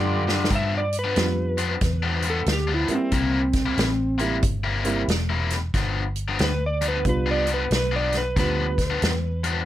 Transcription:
Already playing: F#2 G2 D3 F4 G4 D5
0.27 G2 D3, snare
0.45 snare
0.50 G2 F3 B3 D4, kick, closed hi-hat
0.55 E5
0.78 D5
0.93 closed hi-hat
0.99 B4
1.04 G2 F3 B3 D4
1.15 F2 G3 B3 D4 F4, snare, closed hi-hat
1.58 G2 F3 B3 D4, closed hi-hat
1.81 E2, kick, snare, closed hi-hat
2.02 G2 F3 B3 D4
2.22 G2 F3 B3 D4, closed hi-hat
2.30 A4
2.46 D2, snare, closed hi-hat
2.52 G4
2.67 G2 F3 B3 D4
2.74 E4
2.88 G3 A#3 C4 E4, muted fingered electric bass stroke, closed hi-hat
2.95 C4
3.12 C2 C3 G3 A#3 E4, kick, closed hi-hat
3.53 kick, snare, closed hi-hat
3.66 C3 G3 A#3 E4
3.78 A1, snare, closed hi-hat
4.18 C3 G3 A#3 C4 E4, closed hi-hat
4.43 G1, kick, closed hi-hat
4.64 C3 G3 A#3 E4
4.84 C3 G3 A#3 C4 E4, closed hi-hat
5.08 E1, snare, closed hi-hat
5.30 C3 G3 A#3 E4
5.50 snare, closed hi-hat
5.74 G1 G2 F3 B3 D4, kick, snare, closed hi-hat
6.16 closed hi-hat
6.28 G2 F3 B3 D4
6.39 D2, snare, closed hi-hat
6.44 B4
6.66 D5
6.81 G2 F3 B3 D4, closed hi-hat
6.88 B4
7.05 C2 G3 B3 D4 F4, kick, closed hi-hat
7.09 B4
7.26 G2 F3 B3 D4
7.31 D5
7.47 G2 F3 B3 D4, closed hi-hat
7.54 B4
7.71 B1, snare, closed hi-hat
7.75 B4
7.92 G2 F3 B3 D4
7.96 D5
8.12 snare, closed hi-hat
8.18 B4
8.36 D2 G2 F3 G3 B3 D4 F4 B4, kick, snare, closed hi-hat
8.78 kick, snare, closed hi-hat
8.90 G2 F3 B3 D4
9.02 E2, snare, closed hi-hat
9.44 G2 F3 B3 D4, closed hi-hat

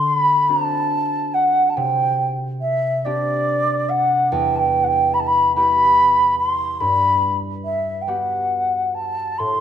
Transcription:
Already playing: D3 A3 D4 F#4 D5
0.07 B5
0.48 C4 D4 F#4 A5
1.34 F#5
1.69 A5
1.76 C3 G5
2.61 E5
3.04 C4 D4 G4 D5
3.89 F#5
4.32 E2 G5
4.55 G5 A5
4.83 F#5 G5
5.13 B5
5.19 A5
5.27 B5
5.55 B3 E4 G4 B5
6.39 C6
6.80 G2 B5
7.64 E5
8.01 G5
8.07 B3 F#4 G4 F#5
8.94 A5
9.38 A2 C6

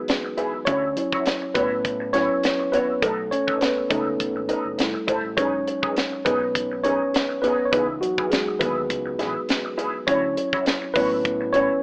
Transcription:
Already playing: E3 F#3 G#3 B3 D#4 F#4 G#4 B4
0.08 muted clean electric guitar stroke, snare, closed hi-hat
0.24 muted clean electric guitar stroke
0.37 E4 G#4 B4, closed hi-hat
0.54 muted clean electric guitar stroke
0.65 D2 C#4 E4 F#4 C#5, kick, closed hi-hat
0.83 muted clean electric guitar stroke
0.96 F#3 C#4 E4, muted clean electric guitar stroke, closed hi-hat
1.12 E4 F#4 C#5, kick
1.26 muted clean electric guitar stroke, snare, closed hi-hat
1.42 muted clean electric guitar stroke
1.54 A2 B3 E4 F#4 B4 C#5, kick, closed hi-hat
1.71 muted clean electric guitar stroke
1.85 kick, closed hi-hat
2.00 muted clean electric guitar stroke
2.13 F#3 C#4 E4 F#4 C#5, snare, closed hi-hat
2.30 muted clean electric guitar stroke
2.44 muted clean electric guitar stroke, snare, closed hi-hat
2.59 muted clean electric guitar stroke
2.72 B3 E4 F#4 B4 C#5, closed hi-hat
2.89 muted clean electric guitar stroke
3.02 B1 A3 D#4 A4 B4, kick, closed hi-hat
3.18 muted clean electric guitar stroke
3.31 C#4 C#5, muted clean electric guitar stroke, closed hi-hat
3.47 D#4 A4 B4, kick
3.61 B3 B4, muted clean electric guitar stroke, snare, closed hi-hat
3.77 muted clean electric guitar stroke
3.90 C#2 A3 C#4 D#4 A4 B4, kick, closed hi-hat
4.07 muted clean electric guitar stroke
4.20 B1, kick, closed hi-hat
4.36 G#1, muted clean electric guitar stroke
4.49 D#4 A4 B4, closed hi-hat
4.65 F#1, muted clean electric guitar stroke
4.78 F1 G3 A3 E4, muted clean electric guitar stroke, snare, closed hi-hat
4.94 muted clean electric guitar stroke
5.07 G1 E4 A4 C5, kick, closed hi-hat
5.24 A1, muted clean electric guitar stroke
5.37 E1 F#3 G#3 C#4 D#4 G#4 B4 C#5, kick, closed hi-hat
5.54 muted clean electric guitar stroke
5.67 muted clean electric guitar stroke, closed hi-hat
5.82 D#4 G#4 B4, kick
5.96 muted clean electric guitar stroke, snare, closed hi-hat
6.12 muted clean electric guitar stroke
6.25 B1 B3 D#4 G#4 B4, kick, closed hi-hat
6.42 muted clean electric guitar stroke
6.55 kick, closed hi-hat
6.71 muted clean electric guitar stroke
6.83 C#4 D#4 G#4 B4 C#5, closed hi-hat
7.01 muted clean electric guitar stroke
7.14 muted clean electric guitar stroke, snare, closed hi-hat
7.29 muted clean electric guitar stroke
7.42 B3 D#4 G#4 B4, closed hi-hat
7.59 muted clean electric guitar stroke
7.65 C#5
7.72 C#2 E3 B3 D#4 E4 G#4 B4, kick, closed hi-hat
7.89 muted clean electric guitar stroke
8.01 F#3 F#4, muted clean electric guitar stroke, closed hi-hat
8.18 E4 G#4 B4, kick
8.31 G#3 G#4, muted clean electric guitar stroke, snare, closed hi-hat
8.48 muted clean electric guitar stroke
8.60 D#2 B3 E4 G#4 B4, kick, closed hi-hat
8.76 muted clean electric guitar stroke
8.90 C#2, kick, closed hi-hat
9.06 muted clean electric guitar stroke
9.19 A1 E4 G#4 B4, snare, closed hi-hat
9.35 muted clean electric guitar stroke
9.49 muted clean electric guitar stroke, snare, closed hi-hat
9.65 muted clean electric guitar stroke
9.78 E4 G#4 B4, closed hi-hat
9.94 muted clean electric guitar stroke
10.07 D2 F#3 C#4 E4 F#4 C#5, kick, closed hi-hat
10.23 muted clean electric guitar stroke
10.37 muted clean electric guitar stroke, closed hi-hat
10.53 E4 F#4 C#5, kick
10.66 muted clean electric guitar stroke, snare, closed hi-hat
10.82 muted clean electric guitar stroke
10.94 A2 F#3 B3 C#4 E4 F#4 B4 C#5, kick, open hi-hat
11.12 muted clean electric guitar stroke
11.25 kick, closed hi-hat
11.41 muted clean electric guitar stroke
11.53 C#4 E4 F#4 C#5, closed hi-hat
11.71 muted clean electric guitar stroke

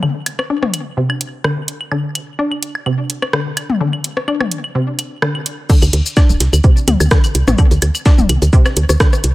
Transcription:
0.03 D3, claves
0.26 closed hi-hat, high woodblock
0.39 cross-stick, claves
0.50 D4
0.63 cross-stick, mid tom
0.73 closed hi-hat, claves
0.97 C3
1.10 claves, high woodblock
1.21 closed hi-hat
1.44 D3, cross-stick, claves
1.68 closed hi-hat
1.81 claves
1.92 D3, high woodblock
2.15 closed hi-hat, claves
2.39 D4
2.52 claves
2.63 closed hi-hat
2.75 high woodblock
2.86 C3, claves
3.10 closed hi-hat
3.22 cross-stick, claves
3.33 D3, cross-stick
3.57 closed hi-hat, claves, high woodblock
3.70 mid tom
3.81 D3
3.93 claves
4.04 closed hi-hat
4.17 cross-stick
4.28 D4, claves
4.41 cross-stick, mid tom, high woodblock
4.51 closed hi-hat
4.64 claves
4.75 C3
4.99 closed hi-hat, claves
5.22 D3, cross-stick, high woodblock
5.35 claves
5.46 closed hi-hat
5.69 D3, kick, crash, shaker
5.82 D2, closed hi-hat, claves, shaker
5.93 D2, closed hi-hat, shaker
6.06 shaker
6.17 D4, kick, snare, claves, high woodblock, shaker
6.29 D1, shaker
6.40 C2, snare, closed hi-hat, shaker
6.53 D2, claves, shaker
6.64 C3, kick, shaker
6.77 shaker
6.88 D2, closed hi-hat, mid tom, claves, shaker
7.00 D2, high woodblock, shaker
7.11 D3, kick, cross-stick, snare, shaker
7.24 closed hi-hat, claves, shaker
7.35 C2, closed hi-hat, shaker
7.47 A1, cross-stick, mid tom, shaker
7.58 D3, kick, claves, shaker
7.71 D2, closed hi-hat, shaker
7.82 D2, closed hi-hat, high woodblock, shaker
7.95 claves, shaker
8.06 D4, kick, snare, shaker
8.18 D1, mid tom, shaker
8.29 C2, closed hi-hat, claves, shaker
8.42 D2, closed hi-hat, shaker
8.53 C3, kick, shaker
8.66 cross-stick, snare, claves, high woodblock, shaker
8.76 D2, closed hi-hat, shaker
8.89 D2, cross-stick, shaker
9.00 D3, kick, cross-stick, snare, claves, shaker
9.13 cross-stick, shaker
9.24 C2, closed hi-hat, shaker

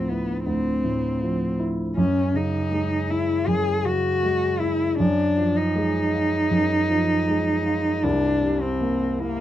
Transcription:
Already playing: D2 A2 F3 C4
0.09 B3 E4
0.46 D2 C4
0.84 A2
1.21 F3
1.59 E4
1.96 F#2 C#4
2.34 C#3 D#4
2.71 G#3
3.10 E4
3.47 F#2 G#4
3.85 C#3 F#4
4.23 G#3
4.60 E4
4.99 F#2 D4
5.37 F3
5.57 D#4
5.76 G#3
6.13 F4
6.51 F#2
6.90 F3
7.28 G#3
7.66 F4
8.03 C2 D4
8.42 C3
8.62 C4
8.81 A#3
9.19 A#3 E4

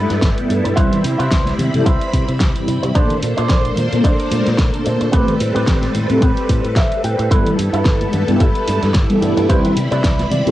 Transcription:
Already playing: G3 B3 E4 A4 B4
0.10 G2, snare, closed hi-hat
0.22 G1, kick, snare, closed hi-hat
0.37 G3 B3 E4 A4, closed hi-hat
0.49 G2, muted clean electric guitar stroke, open hi-hat
0.64 G2, muted clean electric guitar stroke, closed hi-hat
0.76 C2 G3 C4 E4 B4 C5 B5, kick, closed hi-hat
0.92 closed hi-hat, low conga
1.04 C3, open hi-hat
1.19 C3 E4 B4 C5, closed hi-hat
1.31 C2, kick, snare, closed hi-hat
1.46 snare, closed hi-hat, high conga
1.59 C3, open hi-hat, low conga
1.73 C3 G3 C4 E4 A4, closed hi-hat, high conga
1.85 C2 E4 B4 C5, kick, closed hi-hat
2.01 closed hi-hat
2.13 C3, kick, open hi-hat
2.28 C3, closed hi-hat
2.40 C2, kick, snare, closed hi-hat
2.55 G3 C4 E4 B5, closed hi-hat
2.67 C3, muted clean electric guitar stroke, open hi-hat
2.83 C3, muted clean electric guitar stroke, closed hi-hat
2.95 A#1 A#3 D4 A4 C5, kick, closed hi-hat
3.10 closed hi-hat, low conga
3.23 A#2, open hi-hat
3.37 A#2 D4 A4 C5, closed hi-hat
3.49 A#1, kick, snare, closed hi-hat
3.65 closed hi-hat, high conga
3.76 A#2, open hi-hat, low conga
3.91 A#2 A#3 D4 A4 C5, closed hi-hat, high conga
4.04 A#1 D4 A4 C5, kick, closed hi-hat
4.20 closed hi-hat
4.31 A#2, open hi-hat, high conga
4.46 A#2, snare, closed hi-hat
4.58 A#1, kick, snare, closed hi-hat
4.73 A#3 D4 A4 C5, closed hi-hat
4.85 A#2, muted clean electric guitar stroke, open hi-hat
5.00 A#2, muted clean electric guitar stroke, closed hi-hat
5.12 A1 G3 A3 C4 G4 B4, kick, closed hi-hat
5.28 closed hi-hat, low conga
5.40 A2, open hi-hat
5.55 A2 C4 G4 B4, closed hi-hat
5.67 A1, kick, snare, closed hi-hat
5.82 snare, closed hi-hat, high conga
5.95 A2, open hi-hat, low conga
6.10 A2 A3 C4 G4 A4, closed hi-hat, high conga
6.22 A1 C4 G4 B4, kick, closed hi-hat
6.37 closed hi-hat
6.49 A2, kick, open hi-hat
6.64 A2, closed hi-hat
6.76 A1 E5, kick, snare, closed hi-hat
6.92 closed hi-hat
7.04 A2 G5, muted clean electric guitar stroke, open hi-hat
7.19 A2, muted clean electric guitar stroke, closed hi-hat
7.31 G1 G3 B3 E4 A4 B4, kick, closed hi-hat
7.46 closed hi-hat, low conga
7.58 G2, open hi-hat
7.73 G2 E4 A4 B4, closed hi-hat
7.85 G1, kick, snare, closed hi-hat
8.01 closed hi-hat, high conga
8.13 G2, open hi-hat, low conga
8.27 G2 G3 B3 E4 G4, closed hi-hat, high conga
8.40 G1 E4 A4 B4, kick, closed hi-hat
8.55 closed hi-hat
8.68 G2, open hi-hat, high conga
8.82 G2, snare, closed hi-hat
8.94 G1, kick, snare, closed hi-hat
9.09 G3 B3 E4 A4, closed hi-hat
9.22 G2, muted clean electric guitar stroke, open hi-hat
9.37 G2, muted clean electric guitar stroke, closed hi-hat, high bongo
9.48 C2 G3 C4 E4 B4 C5 B5, kick, closed hi-hat
9.65 closed hi-hat, high bongo, low conga
9.77 C3, open hi-hat
9.91 C3 E4 B4 D5, closed hi-hat, high bongo
10.04 C2, kick, snare, closed hi-hat
10.19 snare, closed hi-hat, high bongo, high conga
10.31 C3 D5, open hi-hat, low conga
10.46 C3 G3 C4 E4 A4, closed hi-hat, high conga

